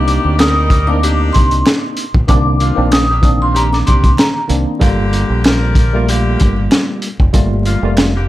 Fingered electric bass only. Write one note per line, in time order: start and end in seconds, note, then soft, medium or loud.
0.00 0.17 C2 loud
0.25 1.30 D2 medium
1.36 1.62 C2 medium
2.14 2.27 A#1 loud
2.29 2.70 C2 loud
2.78 3.83 A#1 medium
3.88 4.14 C2 medium
4.50 4.64 C2 medium
4.81 5.23 G1 loud
5.30 6.35 A#1 loud
6.41 6.67 G1 loud
7.20 7.32 F1 loud
7.34 7.75 G1 loud
7.83 8.28 F1 medium